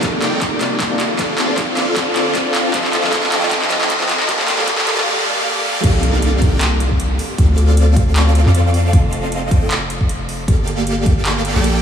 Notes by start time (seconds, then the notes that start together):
Already playing: C2 D#3 A#3 C4 D#4 F4 A#4 D5 F5, riser
0.03 kick, clap, closed hi-hat
0.21 C3 A#3 C4 D#4 F4 A#4 D5 G5, clap, closed hi-hat
0.42 kick, clap, closed hi-hat
0.60 C3 A#3 D#4 F4 D5, clap, closed hi-hat
0.80 kick, clap, closed hi-hat
0.90 C3 A#3 D#4 F4 D5
1.00 D3 C4 A4, clap, closed hi-hat
1.18 D2 D3 C4 F4 A4 D5 F5, kick, clap, closed hi-hat
1.38 clap, closed hi-hat
1.48 D3 C4 F4 D5
1.58 kick, clap, closed hi-hat
1.76 D3 C4 F4 A4 D5 F5, clap, closed hi-hat
1.96 kick, clap, closed hi-hat
2.15 D3 C4 F4 D5, clap, closed hi-hat
2.26 F2
2.35 kick, clap, closed hi-hat
2.45 D3 C4 F4 D5
2.55 clap, closed hi-hat
2.73 D#3 F3 C4 F4 A4 D#5 F5, kick, clap, closed hi-hat
2.85 clap
2.93 clap, closed hi-hat
3.03 F3 C4 A4 D#5, clap
3.13 kick, clap, closed hi-hat
3.23 clap
3.31 F3 C4 F4 A4 D#5 G5, clap, closed hi-hat
3.43 clap
3.51 kick, clap, closed hi-hat
3.62 clap
3.70 F3 C4 A4 D#5, clap, closed hi-hat
3.81 clap
3.90 kick, clap, closed hi-hat
4.00 F3 C4 A4 D#5, clap
4.09 clap, closed hi-hat
4.20 clap
4.28 F3 G3 A#3 F4 G4 A4 A#4 D5 F5, kick, clap, closed hi-hat
4.40 clap
4.48 clap, closed hi-hat
4.58 G3 F4 A4 A#4, clap
4.67 kick, clap, closed hi-hat
4.78 clap
4.86 G3 A#3 F4 G4 A4 A#4 D5 F5, clap, closed hi-hat
4.98 clap
5.84 C2 C4 D#4 A#4 D5 F5, kick, closed hi-hat, crash, impact
6.03 closed hi-hat
6.22 closed hi-hat
6.42 C4 D#4 A#4 D5 G5, kick, closed hi-hat
6.61 clap, closed hi-hat
6.80 closed hi-hat
6.91 kick
7.00 closed hi-hat
7.19 open hi-hat
7.38 D2 C4 F4 A4 D5 F5, kick, closed hi-hat
7.58 closed hi-hat
7.77 closed hi-hat
7.96 C4 F4 A4 D5 F5, kick, closed hi-hat
8.16 clap, closed hi-hat
8.35 closed hi-hat
8.46 F2, clap
8.55 closed hi-hat
8.74 open hi-hat
8.93 F1 C4 F4 A4 F5, kick, closed hi-hat
9.13 closed hi-hat
9.32 closed hi-hat
9.51 C4 F4 A4 D#5 G5, kick, closed hi-hat
9.71 clap, closed hi-hat
9.90 closed hi-hat
10.01 kick
10.09 closed hi-hat
10.29 open hi-hat
10.48 G1 A#3 G4 A4 D5 F5, kick, closed hi-hat
10.68 closed hi-hat
10.87 closed hi-hat
11.06 A#3 G4 D5, kick, closed hi-hat
11.25 clap, closed hi-hat
11.45 closed hi-hat
11.56 A#1 A#3 G4 A4 D5 G5, clap
11.64 closed hi-hat